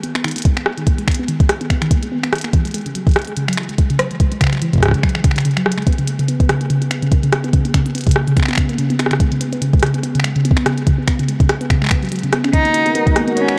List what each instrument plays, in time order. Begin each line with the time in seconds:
0.03 synth pluck B3, closed hi-hat
0.15 synth pluck B3, finger snap
0.24 synth pluck D#3, finger snap, closed hi-hat
0.28 closed hi-hat
0.31 closed hi-hat
0.36 synth pluck A#3, closed hi-hat
0.38 closed hi-hat
0.42 synth pluck G#3, kick, closed hi-hat
0.45 closed hi-hat
0.57 synth pluck B3, finger snap, closed hi-hat
0.66 synth pluck B3, cross-stick
0.78 synth pluck D#3, closed hi-hat
0.87 synth pluck A#3, kick, closed hi-hat
0.98 synth pluck G#3, closed hi-hat
1.08 synth pluck B3, finger snap, kick, closed hi-hat
1.11 closed hi-hat
1.15 closed hi-hat
1.19 synth pluck B3
1.28 synth pluck D#3, closed hi-hat
1.40 synth pluck A#3, kick, closed hi-hat
1.49 synth pluck G#3, cross-stick, closed hi-hat
1.61 synth pluck B3, closed hi-hat
1.70 synth pluck B3, finger snap, kick, closed hi-hat
1.82 synth pluck D#3, finger snap, closed hi-hat
1.91 synth pluck A#3, kick, closed hi-hat
2.03 synth pluck G#3, closed hi-hat
2.12 synth pluck B3
2.23 synth pluck B3, finger snap, closed hi-hat
2.32 synth pluck D#3, cross-stick, closed hi-hat
2.35 closed hi-hat
2.38 closed hi-hat
2.41 finger snap, closed hi-hat
2.44 synth pluck A#3, closed hi-hat
2.53 synth pluck E3, kick, closed hi-hat
2.65 synth pluck G#3, closed hi-hat
2.67 closed hi-hat
2.71 synth pluck G#3, closed hi-hat
2.74 closed hi-hat
2.78 closed hi-hat
2.81 closed hi-hat
2.86 synth pluck C#3, closed hi-hat
2.95 synth pluck F#3, closed hi-hat
3.07 synth pluck E3, kick, closed hi-hat
3.09 closed hi-hat
3.11 closed hi-hat
3.14 cross-stick, closed hi-hat
3.16 closed hi-hat
3.19 closed hi-hat
3.22 closed hi-hat
3.25 closed hi-hat
3.27 synth pluck G#3, closed hi-hat
3.37 synth pluck C#3, closed hi-hat
3.48 synth pluck F#3, finger snap, closed hi-hat
3.53 closed hi-hat
3.57 synth pluck E3, finger snap
3.63 closed hi-hat
3.69 synth pluck G#3, closed hi-hat
3.78 synth pluck G#3, kick, closed hi-hat
3.90 synth pluck C#3, closed hi-hat
3.99 synth pluck F#3, cross-stick, closed hi-hat
4.11 synth pluck E3, closed hi-hat
4.20 synth pluck G#3, kick, closed hi-hat
4.32 synth pluck G#3, closed hi-hat
4.41 synth pluck C#3, finger snap, kick, closed hi-hat
4.44 finger snap
4.47 finger snap
4.50 finger snap
4.53 synth pluck F#3, finger snap, closed hi-hat
4.55 finger snap
4.57 finger snap
4.59 synth pluck E3, finger snap, closed hi-hat
4.73 synth pluck G#3, kick, closed hi-hat
4.76 kick
4.78 kick
4.80 synth pluck G#3, kick
4.83 kick, cross-stick, closed hi-hat
4.85 kick, cross-stick
4.88 kick, cross-stick
4.91 synth pluck C#3, kick, cross-stick, closed hi-hat
5.03 synth pluck F#3, finger snap, kick
5.09 closed hi-hat
5.15 synth pluck E3, finger snap
5.24 synth pluck C#3, finger snap, kick, closed hi-hat
5.31 finger snap
5.36 synth pluck C#3, finger snap, closed hi-hat
5.40 closed hi-hat
5.45 synth pluck C#3, closed hi-hat
5.51 closed hi-hat
5.57 synth pluck F#3, finger snap, closed hi-hat
5.66 synth pluck F#3, cross-stick
5.72 closed hi-hat
5.78 synth pluck G#3, finger snap, closed hi-hat
5.82 closed hi-hat
5.87 synth pluck B3, kick, closed hi-hat
5.93 closed hi-hat
5.98 synth pluck C#3, closed hi-hat
6.08 synth pluck A#3, closed hi-hat
6.19 synth pluck C#3, closed hi-hat
6.28 synth pluck B3, closed hi-hat
6.40 synth pluck B3, kick, closed hi-hat
6.49 synth pluck C#3, cross-stick, closed hi-hat
6.61 synth pluck A#3, closed hi-hat
6.70 synth pluck C#3, closed hi-hat
6.82 synth pluck B3, closed hi-hat
6.91 synth pluck B3, finger snap, closed hi-hat
7.02 synth pluck C#3, closed hi-hat
7.12 synth pluck A#3, kick, closed hi-hat
7.23 synth pluck C#3, closed hi-hat
7.33 synth pluck B3, cross-stick, closed hi-hat
7.44 synth pluck B3, closed hi-hat
7.53 synth pluck C#3, kick, closed hi-hat
7.65 synth pluck A#3, closed hi-hat
7.74 synth pluck C#3, finger snap, kick, closed hi-hat
7.86 synth pluck B3, closed hi-hat
7.95 synth pluck B3, closed hi-hat
7.98 closed hi-hat
8.01 closed hi-hat
8.04 closed hi-hat
8.07 synth pluck C#3, kick, closed hi-hat
8.09 closed hi-hat
8.11 closed hi-hat
8.14 synth pluck A#3, cross-stick, closed hi-hat
8.27 synth pluck C#3, closed hi-hat
8.37 synth pluck B3, finger snap, kick, closed hi-hat
8.40 finger snap
8.43 finger snap
8.46 synth pluck B3, finger snap
8.48 finger snap, closed hi-hat
8.51 finger snap
8.53 finger snap
8.55 finger snap, kick
8.58 synth pluck C#3, finger snap, closed hi-hat
8.69 synth pluck A#3, closed hi-hat
8.78 synth pluck C#3, closed hi-hat
8.90 synth pluck B3, closed hi-hat
8.99 synth pluck B3, finger snap, cross-stick, closed hi-hat
9.06 cross-stick
9.11 synth pluck C#3, finger snap, cross-stick, closed hi-hat
9.20 synth pluck G#3, kick, closed hi-hat
9.32 synth pluck C#3, closed hi-hat
9.41 synth pluck B3, closed hi-hat
9.53 synth pluck B3, closed hi-hat
9.62 synth pluck C#3, closed hi-hat
9.73 synth pluck G#3, kick, closed hi-hat
9.80 synth pluck C#3, cross-stick, closed hi-hat
9.83 closed hi-hat
9.87 closed hi-hat
9.94 synth pluck B3, closed hi-hat
10.03 synth pluck B3, closed hi-hat
10.15 synth pluck C#3, closed hi-hat
10.20 finger snap
10.24 synth pluck G#3, finger snap, closed hi-hat
10.36 synth pluck C#3, closed hi-hat
10.45 synth pluck B3, closed hi-hat
10.51 kick
10.57 synth pluck B3, finger snap, closed hi-hat
10.66 synth pluck C#3, cross-stick, closed hi-hat
10.78 synth pluck G#3, closed hi-hat
10.87 synth pluck C#3, kick, closed hi-hat
10.98 synth pluck B3
11.07 synth pluck B3, finger snap, kick, closed hi-hat
11.19 synth pluck C#3, closed hi-hat
11.28 synth pluck G#3, closed hi-hat
11.40 synth pluck C#3, kick, closed hi-hat
11.49 synth pluck B3, cross-stick, closed hi-hat
11.61 synth pluck B3, closed hi-hat
11.70 synth pluck C#3, finger snap, kick, closed hi-hat
11.82 synth pluck G#3, finger snap
11.84 finger snap
11.86 finger snap
11.89 finger snap, kick
11.91 synth pluck B3, finger snap, closed hi-hat
12.03 synth pluck F#3, closed hi-hat
12.05 closed hi-hat
12.09 synth pluck F#3, closed hi-hat
12.12 closed hi-hat
12.16 closed hi-hat
12.19 closed hi-hat
12.23 synth pluck C#3, closed hi-hat
12.33 synth pluck B3, cross-stick, closed hi-hat
12.44 synth pluck C#4, finger snap, closed hi-hat
12.53 synth pluck D#3, analog synth pad G#3 B3 F#4 A#4, cello D#4, synth texture F#4 F#5, kick, closed hi-hat
12.65 synth pluck A#3, closed hi-hat
12.74 synth pluck A#3, closed hi-hat
12.86 synth pluck B3, closed hi-hat
12.95 synth pluck B3, closed hi-hat
13.07 synth pluck D#3, kick, closed hi-hat
13.16 synth pluck A#3, cross-stick, closed hi-hat
13.28 synth pluck A#3, closed hi-hat
13.37 synth pluck B3, cello C#4, closed hi-hat
13.48 synth pluck B3, finger snap, closed hi-hat